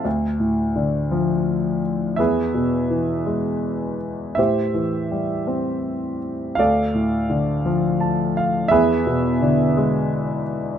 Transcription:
<<
  \new Staff \with { instrumentName = "Grand piano" } { \time 3/4 \key e \phrygian \tempo 4 = 84 << { r2. | r2. | r2. | r2 a''8 f''8 |
r2. | } \\ { c''2. | <gis' b' e''>2. | <g' c'' e''>2. | <a' d'' f''>2. |
<gis' b' e''>2. | } >> }
  \new Staff \with { instrumentName = "Grand piano" } { \clef bass \time 3/4 \key e \phrygian d,8 a,8 d8 f4. | e,8 b,8 e8 gis4. | a,8 e8 g8 c'4. | d,8 a,8 d8 f4. |
e,8 b,8 d8 gis4. | }
>>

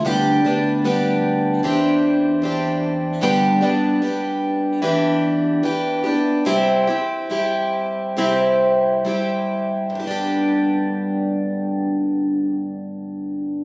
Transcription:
<<
  \new Staff \with { instrumentName = "Twelve-string acoustic guitar" } { \time 4/4 \key g \major \tempo 4 = 72 <d g b d' g'>8 <b d' g'>8 <g b d' g'>4 <e c' d' g'>4 <e c' d' g'>4 | <g, d g b d' g'>8 <g b d' g'>8 <g b d' g'>4 <e b d' g'>4 <e b d' g'>8 <b d' g'>8 | <c g c' e' g'>8 <c' e' g'>8 <g c' e' g'>4 <c g c' e' g'>4 <g c' e' g'>4 | <g, d g b d' g'>1 | }
  \new Staff \with { instrumentName = "Fingered electric bass" } { \clef bass \time 4/4 \key g \major d,8 d,4. e,2 | r1 | r1 | r1 | }
>>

